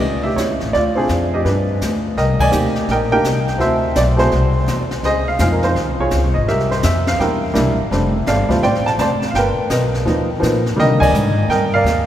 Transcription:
Already playing: D#5
0.01 C#2, brush sweep
0.23 G4 E5
0.36 E2 E4 C#5, snare, hi-hat pedal
0.49 C#2
0.60 A1, snare
0.73 D2 F4 D5, brush sweep, snare
0.95 C4 D4 F4 G#4
1.09 F2, snare, hi-hat pedal
1.34 G4 D#5
1.45 G2 D4 B4, brush sweep, snare
1.81 D2, snare, hi-hat pedal
2.17 C2 A#4 D#5 G5, brush sweep, snare
2.40 D5 D#5 G#5, kick, crash
2.51 D2 A#3 C4 D#4 G4, hi-hat pedal
2.75 snare
2.88 A#1 A#4 D#5 G5, brush sweep, snare
3.11 A#3 D4 D#4 G4 A#4 D#5 G5
3.23 C2, snare, hi-hat pedal
3.48 snare
3.58 D2 A3 C4 E4 F#4 A4 C5 E5, brush sweep, snare
3.95 B1 D5, snare, hi-hat pedal
4.17 A3 C4 E4 F#4 G#4 C5, snare
4.31 C2, brush sweep, snare
4.67 E2, snare, hi-hat pedal
4.91 muted upright bass stroke, snare
5.03 C#2 G#4 C5 D#5, brush sweep, snare
5.28 F5
5.39 F2 G#3 C4 D#4 F4 F5, snare, hi-hat pedal
5.52 A#4
5.62 D#4 F4 C5, snare
5.75 D#2, brush sweep, snare
5.88 C#2
5.99 C2 F4 G#4 C#5
6.11 C#2, snare, hi-hat pedal
6.24 C2
6.34 G#1 D#5
6.48 C2 G4 A#4 E5, brush sweep, snare
6.59 snare
6.71 C5, snare
6.83 F2 E5, snare, hi-hat pedal
7.07 F5, snare
7.19 E2 G3 A#3 D4 E4 A#4 E5 G5, brush sweep, snare
7.54 C2 G3 A#3 D4 E4, snare, hi-hat pedal
7.67 A#1
7.80 G1
7.91 F1 G3 A3 C4 D4, brush sweep, snare
8.26 G1 A4 D5 F5, snare, hi-hat pedal
8.49 G3 A3 C4 F4, muted upright bass stroke, kick, snare
8.62 A1 C5 D5 G5, brush sweep, snare
8.75 snare
8.86 A5, snare
8.98 F1 C5 D5 A5, snare, hi-hat pedal
9.22 snare
9.31 G1 F5, brush sweep, snare
9.36 A#4 B4 G5
9.57 muted upright bass stroke
9.70 B1 A#4 B4 D#5, snare, hi-hat pedal
9.94 snare
10.06 D#2 F3 A#3 B3 D#4, brush sweep, snare
10.40 A#2 F3 A#3 B3 D#4, snare, hi-hat pedal
10.66 snare
10.76 C3 D3 D#3 G3 A#3 A#4 D#5 G5, brush sweep, snare
11.00 D5 D#5 G#5, kick, crash
11.12 G#2, hi-hat pedal
11.48 G2 A#4 D#5 G5, brush sweep, snare
11.74 A#4 D5 F5
11.84 D#2, snare, hi-hat pedal

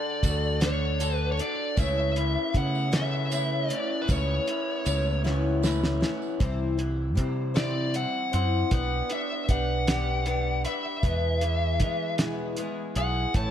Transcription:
Already playing: D3 D4 F#4 A4 D5
0.23 D2 D3 D4 F#4 A4, kick, closed hi-hat, tambourine
0.43 tambourine
0.60 D3 D4 F#4 A4 C#5, snare, closed hi-hat
0.99 D3 D4 F#4 A4, closed hi-hat, tambourine
1.15 B4
1.32 C#5
1.37 D4 F#4 A4, closed hi-hat
1.41 D5
1.77 C#2 C#3 A3 B3 C#4 E4 E5, kick, closed hi-hat, tambourine
2.15 B3 C#4 E4, closed hi-hat
2.53 C#3 A3 B3 C#4 E4 F#5, kick, closed hi-hat
2.75 tambourine
2.91 C#3 A3 B3 C#4 E4 E5, snare, closed hi-hat
3.30 A3 B3 C#4 E4, closed hi-hat, tambourine
3.69 B3 C#4 E4 D5, closed hi-hat
4.02 B4
4.08 C#2 C#3 A3 B3 C#4 E4 C#5, kick, closed hi-hat, tambourine
4.46 B3 C#4 E4, closed hi-hat
4.85 C#2 A3 B3 C#4 E4, closed hi-hat, tambourine
5.06 tambourine
5.24 C#3 A3 B3 C#4 E4, snare
5.62 A3 B3 C#4 E4, snare, tambourine
5.83 snare, tambourine
6.01 B3 C#4 E4, snare, tambourine
6.22 tambourine
6.40 C2 C3 E3 G3 C4 E4 C5, kick, closed hi-hat
6.78 E3 G3 C4 E4 C5, closed hi-hat
7.15 C3 G3 C4 E4 C5, kick, closed hi-hat
7.54 C3 E3 G3 C4 E4 C5 D5, snare, closed hi-hat
7.94 G3 C4 E4 C5 F#5, closed hi-hat
8.32 F#2 C4 E4 C5 F#5, closed hi-hat
8.71 B1 B3 D4 G4 B4 F#5, kick, closed hi-hat
9.10 D4 G4 B4 E5, closed hi-hat
9.49 B1 B3 D4 G4 B4 F#5, kick, closed hi-hat
9.87 B3 D4 G4 B4, snare, closed hi-hat
10.26 B3 D4 G4 B4, closed hi-hat
10.64 D4 G4 B4 E5, closed hi-hat
11.03 E2 B2 E3 G#3 B3 G#4, kick, closed hi-hat
11.41 E3 G#3 B3 G#4, closed hi-hat
11.80 E3 G#3 B3 G#4, kick, closed hi-hat
12.18 E2 B2 E3 G#3 B3 E4 G#4, snare, closed hi-hat
12.57 E3 G#3 B3 G#4, closed hi-hat
12.96 B1 E3 G#3 B3 G#4 F#5, closed hi-hat
13.34 A1 A2 E3 A3 C#4 E4 A5, kick, closed hi-hat

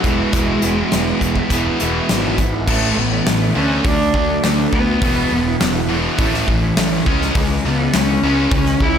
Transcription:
0.02 E1 E2 B2 E3 G#3 B3 E4, kick, closed hi-hat
0.17 G#3 B3 E4
0.32 E1 E3 G#3 B3 E4, kick, closed hi-hat
0.61 E1 E3 G#3 B3 E4, closed hi-hat
0.76 G#3 B3 E4
0.91 E1 E3 G#3 B3 E4, snare, closed hi-hat
1.21 E1 E3 G#3 B3 E4, kick, closed hi-hat
1.36 G#3 B3 E4, kick
1.50 E1 E2 B2 E3 G#3 B3 E4, kick, closed hi-hat
1.65 G#3 B3 E4
1.80 E1 E2 B2 E3 G#3 B3 E4, closed hi-hat
2.09 G#1 E3 G#3 B3 E4, snare, closed hi-hat
2.37 E3 G#3 B3 E4, kick, closed hi-hat
2.53 G#3 B3 E4
2.67 A1 A2 E3 A3 C#4 E4, kick, crash
2.97 A1 A2 E3 B3, muted clean electric guitar stroke
3.12 E3 A3 C#4 E4
3.26 A1 A2 E3, snare, open hi-hat
3.42 E3 A3 C#4 E4
3.55 D2 D3 A3 C#4 D4
3.76 C#4
3.85 D2 D3 F#3 A3 D4, kick, open hi-hat
4.00 muted clean electric guitar stroke
4.14 D2 D3 A3, kick
4.29 D3 F#3 A3 D4
4.43 D2 D3 A3, snare, open hi-hat
4.58 D3 F#3 A3 D4
4.73 D2 D3 A3 B3, kick
4.88 muted clean electric guitar stroke
5.02 E1 E2 B2 E3 G#3 B3 E4, kick, open hi-hat
5.31 E1 E2 B2, muted clean electric guitar stroke
5.46 E3 G#3 B3 E4
5.61 E1 E2 B2, snare, open hi-hat
5.74 E3 G#3 B3 E4
5.89 E2 B2 E3
6.18 A1 A2 E3 A3 C#4 E4, kick, open hi-hat
6.34 muted clean electric guitar stroke, snare
6.47 A1 A2 E3, muted clean electric guitar stroke, kick
6.62 E3 A3 C#4 E4
6.77 A1 A2 E3, snare, open hi-hat
6.92 E3 A3 C#4 E4
7.06 C#2 C#3 G#3 C#4, kick
7.21 muted clean electric guitar stroke, snare
7.35 C#2 C#3 E3 G#3 C#4, kick, open hi-hat
7.64 C#2 C#3 G#3 B3, muted clean electric guitar stroke
7.78 C#3 E3 G#3 C#4
7.93 C#2 C#3 G#3 C#4, snare, open hi-hat
8.08 C#3 E3 G#3 C#4
8.23 C#2 C#3 G#3 C#4
8.51 C#2 C#3 E3 G#3 C#4, kick, open hi-hat
8.66 muted clean electric guitar stroke, snare
8.80 C#2 C#3 G#3 E4, muted clean electric guitar stroke, kick
8.94 G#3 C#4

